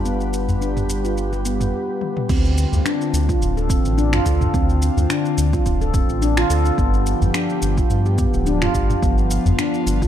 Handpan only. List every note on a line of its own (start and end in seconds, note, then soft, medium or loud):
0.05 0.60 B3 medium
0.61 0.76 D4 medium
1.05 1.12 F4 medium
1.33 1.44 G4 medium
1.45 1.72 B3 medium
2.30 2.84 C4 medium
2.86 3.00 D4 medium
3.29 3.36 F4 medium
3.57 3.68 A4 medium
3.70 3.96 C4 medium
3.98 4.12 D4 loud
4.13 4.25 F4 loud
4.26 4.40 A4 medium
4.54 5.09 C4 medium
5.10 5.25 D4 medium
5.53 5.61 F4 medium
5.81 5.93 A4 medium
5.94 6.21 C4 medium
6.22 6.37 D4 loud
6.38 6.49 F4 loud
6.50 6.65 A4 medium
6.78 7.33 B3 medium
7.34 7.49 D4 medium
7.78 7.85 F4 medium
8.06 8.17 G4 medium
8.18 8.45 B3 medium
8.47 8.61 D4 medium
8.62 8.73 F4 loud
8.75 8.89 G4 medium
9.03 9.57 B3 medium
9.59 9.73 D4 medium
10.02 10.08 F4 medium